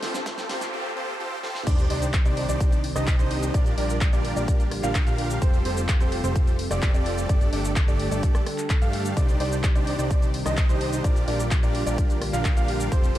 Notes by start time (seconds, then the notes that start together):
Already playing: D3 G3 A3 G4 A4, noise sweep, riser
0.03 C4 F4 G4 A4 C5, snare, open hi-hat
0.14 snare, shaker
0.26 C4 F4 G4 A4 C5, kick, snare, closed hi-hat, shaker
0.38 snare, closed hi-hat, shaker
0.49 G1 C4 F4 G4 A4 C5, snare, open hi-hat
0.61 snare, closed hi-hat, shaker
0.73 C4 F4 G4 A4 C5
0.96 C4 F4 G4 A4 C5
1.20 C4 F4 G4 A4 C5
1.43 C4 F4 G4 A4 C5, snare
1.55 snare
1.67 C2 D#3 G3 C4 D4 D#4 G4 C5 D5, kick, closed hi-hat, crash, sub drop, shaker
1.78 closed hi-hat, shaker
1.90 C2 D4 D#4 G4 C5 D5, open hi-hat
2.02 closed hi-hat, shaker
2.13 kick, clap, closed hi-hat, shaker
2.25 C2 D4 D#4 G4 C5 D5, closed hi-hat, shaker
2.37 open hi-hat
2.49 C2 D4 D#4 G4 C5 D5, closed hi-hat, shaker
2.60 kick, closed hi-hat, shaker
2.72 closed hi-hat, shaker
2.84 open hi-hat
2.96 C2 D4 D#4 G4 C5 D#5, cross-stick, closed hi-hat, shaker
3.07 kick, clap, closed hi-hat, shaker
3.19 C2 D4 D#4 G4 C5 D#5, closed hi-hat, shaker
3.31 open hi-hat
3.42 closed hi-hat, shaker
3.54 A#1 D3 A#3 D4 F4 G4 A#4 D5, kick, closed hi-hat, shaker
3.66 closed hi-hat, shaker
3.78 A#1 D4 F4 G4 A#4 D5, open hi-hat
3.89 closed hi-hat, shaker
4.01 kick, clap, closed hi-hat, shaker
4.13 A#1 D4 F4 G4 A#4 D5, closed hi-hat, shaker
4.25 open hi-hat
4.36 A#1 D4 F4 G4 A#4 D5, closed hi-hat, shaker
4.48 kick, closed hi-hat, shaker
4.60 closed hi-hat, shaker
4.71 cross-stick, open hi-hat
4.83 A#1 D4 F4 G4 A#4 F5, clap, closed hi-hat, shaker
4.95 kick, clap, closed hi-hat, shaker
5.07 A#1 D4 F4 G4 A#4 F5, closed hi-hat, shaker
5.18 open hi-hat
5.30 closed hi-hat, shaker
5.42 F1 C3 A3 C4 F4 G4 A4 C5, kick, closed hi-hat, shaker
5.54 closed hi-hat, shaker
5.65 F1 C4 F4 G4 A4 C5, open hi-hat
5.77 closed hi-hat, shaker
5.88 kick, clap, closed hi-hat, shaker
6.00 F1 C4 F4 G4 A4 C5, closed hi-hat, shaker
6.12 open hi-hat
6.24 F1 C4 F4 G4 A4 C5, closed hi-hat, shaker
6.36 kick, closed hi-hat, shaker
6.47 closed hi-hat, shaker
6.59 open hi-hat
6.71 F1 C4 F4 G4 A4 D5, cross-stick, closed hi-hat, shaker
6.82 kick, clap, closed hi-hat, shaker
6.94 F1 C4 F4 G4 A4 D5, closed hi-hat, shaker
7.06 open hi-hat
7.18 shaker
7.29 G1 D3 G3 A3 D4 G4 A4 D5, kick, closed hi-hat, shaker
7.41 closed hi-hat, shaker
7.53 G1 A3 D4 G4 A4 D5, open hi-hat
7.65 closed hi-hat, shaker
7.76 kick, clap, closed hi-hat, shaker
7.88 G1 A3 D4 G4 A4 D5, closed hi-hat, shaker
8.00 open hi-hat
8.11 G1 A3 D4 G4 A4 D5, closed hi-hat, shaker
8.23 kick, closed hi-hat, shaker
8.35 cross-stick, closed hi-hat, shaker
8.47 cross-stick, open hi-hat
8.58 clap, closed hi-hat, shaker
8.70 kick, clap, closed hi-hat, shaker
8.82 G2 A3 D4 G4 A4 F5, closed hi-hat, shaker
8.93 open hi-hat
9.05 closed hi-hat, shaker
9.17 C2 D#3 C4 D4 D#4 G4 C5 D5, kick, closed hi-hat, shaker
9.29 closed hi-hat, shaker
9.40 C2 D4 D#4 G4 C5 D5, open hi-hat
9.52 closed hi-hat, shaker
9.63 kick, clap, closed hi-hat, shaker
9.75 C2 D4 D#4 G4 C5 D5, closed hi-hat, shaker
9.87 open hi-hat
9.99 C2 D4 D#4 G4 C5 D5, shaker
10.11 kick, closed hi-hat, shaker
10.22 closed hi-hat, shaker
10.34 open hi-hat
10.46 C2 D4 D#4 G4 C5 D#5, cross-stick, closed hi-hat, shaker
10.57 kick, clap, closed hi-hat, shaker
10.69 C2 D4 D#4 G4 C5 D#5, closed hi-hat, shaker
10.81 open hi-hat
10.93 closed hi-hat, shaker
11.04 A#1 D3 A#3 D4 F4 G4 A#4 D5, kick, closed hi-hat, shaker
11.16 closed hi-hat, shaker
11.28 A#1 D4 F4 G4 A#4 D5, open hi-hat
11.39 closed hi-hat, shaker
11.51 kick, clap, closed hi-hat, shaker
11.63 A#1 D4 F4 G4 A#4 D5, closed hi-hat, shaker
11.75 open hi-hat
11.86 A#1 D4 F4 G4 A#4 D5, closed hi-hat, shaker
11.98 kick, closed hi-hat, shaker
12.10 closed hi-hat, shaker
12.22 cross-stick, open hi-hat
12.33 A#1 D4 F4 G4 A#4 F5, clap, closed hi-hat, shaker
12.45 kick, clap, closed hi-hat, shaker
12.57 A#1 D4 F4 G4 A#4 F5, closed hi-hat, shaker
12.68 open hi-hat
12.80 closed hi-hat, shaker
12.92 F1 C3 A3 C4 F4 G4 A4 C5, kick, closed hi-hat, shaker
13.03 closed hi-hat, shaker